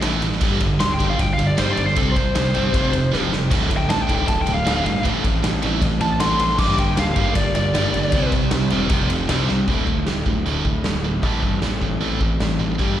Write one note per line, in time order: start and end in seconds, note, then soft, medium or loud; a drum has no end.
0.01 0.21 A1 medium
0.01 0.20 A2 medium
0.01 0.21 E3 medium
0.01 0.21 A3 loud
0.01 snare loud
0.01 ride loud
0.22 0.40 A1 medium
0.22 0.39 A2 medium
0.22 0.40 E3 medium
0.22 ride medium
0.32 snare soft
0.41 0.60 G1 medium
0.41 0.59 G2 medium
0.41 0.60 D3 loud
0.41 0.60 G3 loud
0.41 kick loud
0.41 crash medium
0.60 0.79 G1 medium
0.60 0.78 G2 medium
0.60 0.78 D3 medium
0.60 kick medium
0.60 ride medium
0.80 0.99 D1 loud
0.80 0.97 G2 medium
0.80 0.98 D3 medium
0.80 0.93 C6 loud
0.80 snare loud
0.80 ride medium
0.93 1.06 G5 medium
0.99 1.18 G1 medium
0.99 1.17 G2 medium
0.99 1.18 D3 medium
0.99 1.18 G3 loud
0.99 kick medium
0.99 ride medium
1.10 1.21 F5 medium
1.19 1.37 G1 medium
1.19 1.36 G2 medium
1.19 1.36 D3 medium
1.19 1.32 G5 loud
1.19 kick loud
1.19 ride loud
1.33 1.47 F5 medium
1.38 1.56 G1 medium
1.38 1.56 G2 medium
1.38 1.56 D3 medium
1.38 ride medium
1.47 1.58 D5 medium
1.57 1.76 G1 medium
1.57 1.76 G2 medium
1.57 1.76 D3 medium
1.57 1.76 G3 medium
1.57 1.72 C5 medium
1.57 snare loud
1.57 ride medium
1.72 1.86 D5 medium
1.77 1.95 G1 medium
1.77 1.94 G2 medium
1.77 1.95 D3 medium
1.77 ride medium
1.86 1.97 C5 medium
1.86 snare soft
1.95 2.33 C2 medium
1.95 2.14 C3 medium
1.95 2.14 G3 loud
1.95 2.15 C4 loud
1.95 2.11 A4 medium
1.95 kick loud
1.95 ride medium
2.11 3.23 C5 medium
2.16 2.33 C3 medium
2.16 2.33 G3 medium
2.16 kick medium
2.16 ride medium
2.35 2.53 C2 medium
2.35 2.52 C3 medium
2.35 2.53 G3 medium
2.35 snare loud
2.35 ride medium
2.54 2.73 G1 medium
2.54 2.72 C3 medium
2.54 2.73 G3 medium
2.54 2.73 C4 medium
2.54 ride medium
2.73 2.92 F1 medium
2.73 2.92 F2 loud
2.73 2.92 C3 medium
2.73 2.92 F3 medium
2.73 kick loud
2.73 ride loud
2.93 3.11 F1 medium
2.93 3.10 F2 medium
2.93 3.10 C3 medium
2.93 ride medium
3.12 3.30 F1 medium
3.12 3.30 F2 medium
3.12 3.30 C3 medium
3.12 3.31 F3 loud
3.12 snare medium
3.31 3.50 F1 medium
3.31 3.49 F2 medium
3.31 3.49 C3 medium
3.31 snare medium
3.51 3.69 D1 medium
3.51 3.69 D2 medium
3.51 3.69 A2 medium
3.51 3.69 D3 loud
3.51 5.04 A3 medium
3.51 5.05 E4 loud
3.51 kick loud
3.51 crash medium
3.51 ride loud
3.70 3.88 D1 medium
3.70 3.87 D2 medium
3.70 3.88 A2 medium
3.70 kick medium
3.70 ride medium
3.77 3.89 G5 loud
3.89 4.07 A1 loud
3.89 4.06 D2 medium
3.89 4.07 A2 medium
3.89 4.02 A5 loud
3.89 snare loud
3.89 ride medium
4.02 4.14 G5 medium
4.07 4.27 D1 medium
4.07 4.26 D2 medium
4.07 4.27 A2 medium
4.07 4.27 D3 medium
4.07 kick medium
4.07 ride medium
4.15 4.28 G5 medium
4.27 4.46 D1 loud
4.27 4.45 D2 medium
4.27 4.45 A2 loud
4.27 4.41 A5 loud
4.27 kick loud
4.27 ride loud
4.41 4.54 G5 medium
4.46 4.65 D1 medium
4.46 4.64 D2 medium
4.46 4.64 A2 medium
4.46 ride medium
4.54 5.04 F5 loud
4.65 4.84 D1 medium
4.65 4.83 D2 medium
4.65 4.84 A2 medium
4.65 4.85 D3 loud
4.65 snare loud
4.65 ride loud
4.85 5.03 G1 medium
4.85 5.03 D2 medium
4.85 5.02 A2 medium
4.85 ride medium
4.96 snare soft
5.03 5.41 A1 medium
5.03 5.22 A2 medium
5.03 5.23 E3 loud
5.03 5.23 A3 loud
5.03 6.58 C4 medium
5.03 6.59 E4 medium
5.03 6.59 A4 medium
5.03 kick loud
5.03 ride medium
5.24 5.41 A2 medium
5.24 5.42 E3 medium
5.24 kick medium
5.24 ride medium
5.43 5.62 A1 loud
5.43 5.61 A2 medium
5.43 5.61 E3 medium
5.43 snare loud
5.43 ride loud
5.62 5.81 A1 medium
5.62 5.80 A2 medium
5.62 5.81 E3 medium
5.62 5.82 A3 medium
5.62 ride medium
5.82 5.99 A1 medium
5.82 5.99 A2 medium
5.82 5.99 E3 medium
5.82 kick loud
5.82 ride medium
6.00 6.18 A1 medium
6.00 6.18 A2 medium
6.00 6.19 E3 medium
6.00 6.20 A5 loud
6.00 ride medium
6.19 6.38 A1 medium
6.19 6.38 A2 medium
6.19 6.39 E3 medium
6.19 6.39 A3 loud
6.19 6.58 C6 loud
6.19 snare loud
6.19 ride loud
6.39 6.60 A1 medium
6.39 6.57 A2 medium
6.39 6.57 E3 medium
6.39 ride medium
6.49 snare soft
6.58 6.77 G1 medium
6.58 6.76 G2 loud
6.58 6.77 D3 loud
6.58 6.78 G3 loud
6.58 8.12 A#3 loud
6.58 8.13 D4 loud
6.58 8.13 G4 medium
6.58 6.78 D6 loud
6.58 kick loud
6.58 crash medium
6.78 6.96 G1 medium
6.78 6.96 G2 medium
6.78 6.96 D3 medium
6.78 6.98 G5 loud
6.78 kick medium
6.78 ride medium
6.97 7.15 D1 loud
6.97 7.15 G2 medium
6.97 7.15 D3 medium
6.97 7.35 F5 loud
6.97 snare loud
6.97 ride loud
7.16 7.34 G1 loud
7.16 7.35 G2 medium
7.16 7.35 D3 loud
7.16 7.35 G3 loud
7.16 kick medium
7.16 ride medium
7.35 7.54 G1 medium
7.35 7.54 G2 medium
7.35 7.54 D3 medium
7.35 7.54 D5 medium
7.35 kick loud
7.35 ride loud
7.55 7.73 G1 medium
7.55 7.73 G2 medium
7.55 7.73 D3 medium
7.55 8.30 D5 medium
7.55 ride medium
7.74 7.92 G1 loud
7.74 7.92 G2 medium
7.74 7.92 D3 medium
7.74 7.93 G3 loud
7.74 snare loud
7.74 ride loud
7.93 8.12 G1 medium
7.93 8.11 G2 medium
7.93 8.11 D3 medium
7.93 ride medium
8.04 snare soft
8.12 8.49 C2 medium
8.12 8.32 C3 loud
8.12 8.32 G3 loud
8.12 8.32 C4 loud
8.12 8.90 E4 loud
8.12 8.91 G4 medium
8.12 kick loud
8.12 ride medium
8.16 8.91 C5 loud
8.32 8.50 C3 medium
8.32 8.51 G3 medium
8.32 kick medium
8.32 ride medium
8.51 8.70 C2 loud
8.51 8.69 C3 medium
8.51 8.70 G3 medium
8.51 snare loud
8.51 ride medium
8.70 8.91 E1 medium
8.70 8.89 C3 medium
8.70 8.90 G3 medium
8.70 8.90 C4 loud
8.70 ride medium
8.89 9.08 F1 loud
8.89 9.08 F2 medium
8.89 9.09 C3 loud
8.89 9.09 F3 loud
8.89 9.28 A3 medium
8.89 9.28 C4 loud
8.89 9.29 F4 loud
8.89 kick loud
8.89 ride medium
9.10 9.28 F1 medium
9.10 9.28 F2 medium
9.10 9.28 C3 medium
9.10 ride medium
9.29 9.47 C2 loud
9.29 9.48 C3 medium
9.29 9.48 G3 medium
9.29 9.48 C4 loud
9.29 9.67 E4 medium
9.29 9.68 G4 loud
9.29 9.68 C5 loud
9.29 snare loud
9.29 ride loud
9.48 9.67 C2 medium
9.48 9.66 C3 medium
9.48 9.67 G3 medium
9.48 snare medium
9.67 9.84 D1 medium
9.67 9.86 D2 medium
9.67 9.87 A2 medium
9.67 9.87 D3 medium
9.67 11.22 A3 medium
9.67 11.24 E4 medium
9.67 kick medium
9.67 open hi-hat soft
9.87 10.04 D1 medium
9.87 10.05 D2 medium
9.87 10.05 A2 medium
9.87 kick medium
10.06 10.23 D1 medium
10.06 10.24 D2 medium
10.06 10.25 A2 medium
10.06 snare medium
10.06 open hi-hat soft
10.26 10.43 D1 medium
10.26 10.44 D2 medium
10.26 10.44 A2 medium
10.26 kick medium
10.45 10.62 D1 medium
10.45 10.64 D2 medium
10.45 10.64 A2 medium
10.45 10.65 D3 medium
10.45 open hi-hat soft
10.65 10.82 D1 medium
10.65 10.83 D2 medium
10.65 10.83 A2 medium
10.65 kick medium
10.84 11.23 D1 medium
10.84 11.03 D2 medium
10.84 11.03 A2 medium
10.84 snare loud
10.84 open hi-hat soft
11.04 11.22 D2 medium
11.04 11.22 A2 medium
11.23 11.40 A1 medium
11.23 11.42 A2 medium
11.23 11.42 E3 medium
11.23 11.43 A3 medium
11.23 12.79 C4 medium
11.23 12.79 E4 medium
11.23 12.79 A4 medium
11.23 kick medium
11.23 open hi-hat soft
11.43 11.60 G2 medium
11.43 11.61 A2 medium
11.43 11.61 E3 medium
11.43 kick medium
11.62 11.95 A1 medium
11.62 11.80 A2 medium
11.62 11.80 E3 medium
11.62 snare medium
11.62 open hi-hat soft
11.81 12.00 A2 medium
11.81 12.00 E3 medium
11.81 kick medium
12.00 12.34 A1 medium
12.00 12.19 A2 medium
12.00 12.20 E3 medium
12.00 12.20 A3 medium
12.00 open hi-hat soft
12.21 12.39 A2 medium
12.21 12.39 E3 medium
12.21 kick medium
12.40 12.57 A1 medium
12.40 12.58 A2 medium
12.40 12.58 E3 medium
12.40 snare loud
12.40 open hi-hat soft
12.59 12.76 A1 medium
12.59 12.77 A2 medium
12.59 12.78 E3 medium
12.78 12.96 G1 medium
12.78 12.97 G2 medium
12.78 12.97 D3 medium
12.78 12.98 G3 medium
12.78 13.00 A#3 medium
12.78 13.00 D4 medium
12.78 13.00 G4 medium
12.78 kick medium
12.78 open hi-hat soft